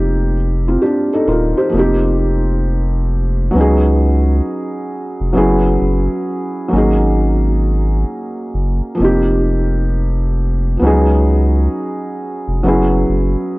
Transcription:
0.00 0.78 F1 loud
0.00 1.66 F3 medium
0.00 1.67 A#3 medium
0.00 0.34 C4 medium
0.00 0.35 D#4 medium
0.00 0.36 G4 medium
0.68 0.82 C4 soft
0.68 0.82 F4 medium
0.82 1.10 D4 medium
0.82 1.10 G4 medium
1.13 1.28 D#4 medium
1.13 1.27 A4 medium
1.27 1.54 D#1 medium
1.27 1.56 F4 medium
1.27 1.55 A#4 medium
1.57 1.78 G4 medium
1.57 2.00 C5 medium
1.69 3.50 F1 loud
1.69 3.49 F3 medium
1.69 3.50 A#3 medium
1.74 3.51 C4 medium
1.74 3.53 D#4 medium
1.79 3.54 G4 medium
3.51 4.41 C#2 loud
3.51 5.30 F#3 medium
3.51 5.32 B3 medium
3.56 5.33 C#4 medium
3.56 5.34 D#4 medium
3.61 5.35 G#4 medium
5.20 5.35 F1 medium
5.33 5.78 F#1 loud
5.33 6.67 F#3 medium
5.33 6.71 B3 medium
5.33 6.71 C#4 medium
5.33 6.72 E4 medium
5.38 6.73 G#4 medium
5.81 6.08 F#1 medium
6.68 8.93 F#3 medium
6.68 8.95 A#3 medium
6.73 8.05 G#1 loud
6.73 8.96 C#4 medium
6.73 8.97 D#4 medium
6.78 8.98 G#4 medium
8.54 8.81 F#1 medium
8.95 10.75 F3 medium
8.95 10.76 A#3 medium
8.99 10.77 F1 loud
8.99 10.77 C4 medium
8.99 10.79 D#4 medium
9.04 10.80 G4 medium
10.77 10.88 F3 medium
10.77 12.58 B3 medium
10.82 11.68 C#2 loud
10.82 12.60 F#3 medium
10.82 12.60 C#4 medium
10.82 12.61 D#4 medium
10.87 12.62 G#4 medium
12.48 12.62 F1 medium
12.63 13.05 F#1 loud
12.63 13.59 F#3 medium
12.63 13.59 B3 medium
12.63 13.59 C#4 medium
12.63 13.59 E4 medium
12.68 13.59 G#4 medium
13.09 13.36 F#1 loud

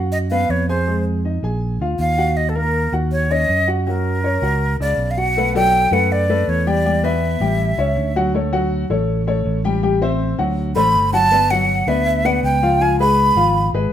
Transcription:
0.00 0.46 F#2 medium
0.00 0.24 F#4 medium
0.00 0.24 F#5 medium
0.12 0.18 D#5 medium
0.31 0.62 B3 medium
0.31 0.62 B4 medium
0.31 0.52 F5 medium
0.49 1.37 F2 medium
0.49 0.69 C#5 medium
0.69 0.84 G#4 medium
0.69 1.04 C5 medium
0.69 0.84 G#5 medium
0.87 1.18 G#3 medium
0.87 1.18 G#4 medium
1.25 1.40 D#4 medium
1.25 1.40 D#5 medium
1.43 1.78 A#1 medium
1.43 1.74 G#4 medium
1.43 1.74 G#5 medium
1.80 1.98 D2 medium
1.80 2.12 F4 medium
1.80 2.12 F5 medium
1.99 2.87 D#2 medium
1.99 2.38 F5 loud
2.18 2.49 F#4 medium
2.18 2.49 F#5 medium
2.37 2.51 D#5 medium
2.49 2.57 A4 medium
2.55 2.86 A#3 medium
2.55 2.86 A#4 medium
2.55 2.93 A#4 medium
2.92 3.45 D#2 medium
2.92 3.24 F#4 medium
2.92 3.24 F#5 medium
3.12 3.33 C#5 medium
3.30 3.61 C#4 medium
3.30 3.61 C#5 medium
3.30 3.68 D#5 medium
3.49 4.37 F#2 medium
3.68 3.83 F#4 medium
3.68 3.83 F#5 medium
3.87 4.17 F#3 medium
3.87 4.17 F#4 medium
3.87 4.76 A#4 medium
4.24 4.39 C#4 medium
4.24 4.39 C#5 medium
4.42 4.77 C#2 medium
4.42 4.73 F#4 medium
4.42 4.73 F#5 medium
4.80 4.97 C#2 medium
4.80 5.11 C#3 medium
4.80 5.11 D5 medium
4.80 5.12 D5 medium
4.98 5.85 B1 medium
5.11 5.20 F5 medium
5.17 5.33 F#4 medium
5.17 5.33 F#5 medium
5.17 5.55 F#5 loud
5.37 5.52 A3 medium
5.37 5.52 A4 medium
5.37 5.52 B4 medium
5.55 5.85 F#3 medium
5.55 5.86 A4 medium
5.55 5.86 D5 medium
5.55 5.95 G5 loud
5.91 6.43 F#2 loud
5.91 6.22 A3 medium
5.91 6.22 A4 medium
5.91 6.23 B4 medium
5.91 6.13 F#5 loud
6.12 6.51 D5 medium
6.29 6.60 A3 medium
6.29 6.60 A4 medium
6.29 6.60 B4 medium
6.48 7.35 E2 medium
6.48 6.69 C#5 medium
6.66 6.82 G3 medium
6.66 6.82 G4 medium
6.66 7.06 D5 medium
6.66 6.82 G5 medium
6.85 7.00 G3 medium
6.85 7.01 G4 medium
6.85 7.01 G5 medium
7.04 7.34 B3 medium
7.04 7.34 B4 medium
7.04 7.34 D5 medium
7.04 8.16 E5 medium
7.40 7.75 A1 medium
7.40 7.71 G3 medium
7.40 7.71 G4 medium
7.40 7.72 G5 medium
7.78 7.95 C#2 medium
7.78 8.09 C#4 medium
7.78 8.09 C#5 medium
7.78 8.09 E5 medium
7.97 8.84 D2 medium
8.16 8.31 F#3 medium
8.16 8.31 F#4 medium
8.16 8.31 F#5 medium
8.34 8.49 A3 medium
8.34 8.49 A4 medium
8.34 8.50 C#5 medium
8.52 8.83 F#3 medium
8.52 8.83 F#4 medium
8.52 8.83 F#5 medium
8.90 9.42 A1 medium
8.90 9.20 A3 medium
8.90 9.20 A4 medium
8.90 9.21 C#5 medium
9.27 9.57 A3 medium
9.27 9.58 A4 medium
9.27 9.58 C#5 medium
9.46 10.33 A1 medium
9.64 9.79 G3 medium
9.64 9.80 G4 medium
9.64 9.80 G5 medium
9.83 9.98 G3 medium
9.83 9.98 G4 medium
9.83 9.98 G5 medium
10.02 10.32 C4 medium
10.02 10.32 C5 medium
10.02 10.32 E5 medium
10.38 10.73 D2 loud
10.38 10.69 F#3 medium
10.38 10.69 F#4 medium
10.38 10.69 F#5 medium
10.76 10.93 A1 medium
10.76 11.06 A3 medium
10.76 11.06 A4 medium
10.76 11.06 C5 medium
10.76 11.10 B5 loud
10.94 11.81 G1 medium
11.13 11.28 F#3 medium
11.13 11.28 F#4 medium
11.13 11.28 F#5 medium
11.13 11.52 A5 loud
11.32 11.47 B3 medium
11.32 11.47 B4 medium
11.32 11.47 D5 medium
11.51 11.81 F#3 medium
11.51 11.81 F#4 medium
11.51 11.89 F#5 loud
11.51 11.81 F#5 medium
11.87 12.39 D2 medium
11.87 12.18 B3 medium
11.87 12.18 B4 medium
11.87 12.18 D5 medium
11.87 12.27 E5 medium
12.25 12.55 B3 medium
12.25 12.55 B4 medium
12.25 12.56 D5 medium
12.25 12.43 F#5 medium
12.43 13.30 C#2 medium
12.43 12.83 G5 medium
12.63 12.77 F3 medium
12.63 12.78 F4 medium
12.63 12.78 F5 medium
12.81 12.96 F3 medium
12.81 12.96 F4 medium
12.81 12.96 F5 medium
12.81 13.00 G#5 medium
13.00 13.30 G#3 medium
13.00 13.30 G#4 medium
13.00 13.30 B4 medium
13.00 13.70 B5 medium
13.36 13.70 G#1 loud
13.36 13.67 F3 medium
13.36 13.67 F4 medium
13.36 13.67 F5 medium
13.73 13.90 G#1 medium
13.73 13.93 G#3 medium
13.73 13.93 G#4 medium
13.73 13.93 B4 medium

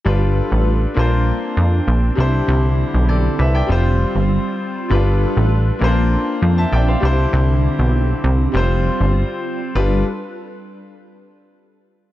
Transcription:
0.05 0.41 G1 loud
0.05 0.96 G3 medium
0.05 0.94 D4 medium
0.05 3.66 D4 medium
0.05 0.96 F4 medium
0.05 0.96 A4 medium
0.05 0.96 B4 medium
0.05 0.97 B4 medium
0.52 0.86 A1 medium
0.94 1.32 A#1 loud
0.94 2.14 A#3 medium
0.94 2.17 A#3 medium
0.94 3.67 C4 medium
0.94 2.15 D4 medium
0.94 2.16 F4 medium
0.99 2.17 C5 medium
1.57 1.81 F2 medium
1.88 2.11 A#1 medium
2.15 2.41 C2 medium
2.15 3.68 D3 medium
2.15 3.65 G3 medium
2.15 3.66 D4 medium
2.15 3.68 E4 medium
2.15 3.67 E4 medium
2.15 3.68 G4 medium
2.20 3.08 C5 medium
2.48 2.84 C2 loud
2.94 3.29 B1 medium
3.09 3.38 A4 medium
3.09 3.38 D5 medium
3.39 3.62 C2 loud
3.39 3.54 B4 medium
3.39 3.54 E5 medium
3.55 3.84 D5 medium
3.55 3.84 G5 medium
3.67 4.05 F1 loud
3.67 4.87 G3 medium
3.67 5.79 G3 medium
3.67 4.88 C4 medium
3.67 4.89 C4 medium
3.67 5.79 F4 medium
3.67 4.89 F4 medium
3.72 4.89 C5 medium
4.15 4.39 G1 medium
4.89 5.26 G1 loud
4.89 5.81 G3 medium
4.89 5.81 D4 medium
4.89 8.51 D4 medium
4.89 5.81 F4 medium
4.89 5.81 A4 medium
4.89 5.81 B4 medium
4.89 5.82 B4 medium
5.37 5.71 A1 medium
5.79 6.17 A#1 loud
5.79 6.99 A#3 medium
5.79 7.02 A#3 medium
5.79 9.71 C4 medium
5.79 5.88 C#4 medium
5.79 7.01 F4 medium
5.84 7.00 D4 medium
5.84 6.42 C5 medium
6.42 6.65 F2 medium
6.58 6.72 E5 medium
6.58 6.72 A5 medium
6.72 6.96 A#1 medium
6.72 6.88 D5 medium
6.72 6.87 G5 medium
6.88 7.04 C5 medium
6.88 7.17 F5 medium
7.00 7.26 C2 medium
7.00 8.53 D3 medium
7.00 8.50 G3 medium
7.00 8.51 D4 medium
7.00 8.53 E4 medium
7.00 8.52 E4 medium
7.00 8.53 G4 medium
7.05 8.52 C5 medium
7.33 7.69 C2 loud
7.79 8.14 B1 medium
8.24 8.47 C2 loud
8.52 8.90 F1 loud
8.52 9.72 G3 medium
8.52 9.74 G3 medium
8.52 9.73 C4 medium
8.52 9.74 F4 medium
8.57 9.74 C5 medium
9.00 9.24 G1 medium
9.75 10.04 G1 loud
9.75 10.04 G3 medium
9.75 10.04 D4 medium
9.75 10.04 F4 medium
9.75 10.04 A4 medium
9.75 10.04 B4 medium

